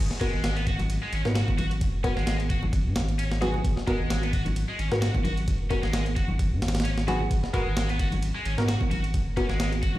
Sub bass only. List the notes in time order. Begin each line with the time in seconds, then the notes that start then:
0.33 G#1
1.13 G#1
1.25 G#2
1.48 G#1
1.94 F#1
2.17 G#1
2.85 G#2
2.96 G#1
3.64 G#1
4.00 G#1
4.79 G#1
4.92 G#2
5.14 G#1
5.60 F#1
5.83 G#1
6.52 G#2
6.62 G#1
7.31 G#1
7.66 G#1
8.45 G#1
8.58 G#2
8.81 G#1
9.27 F#1
9.50 G#1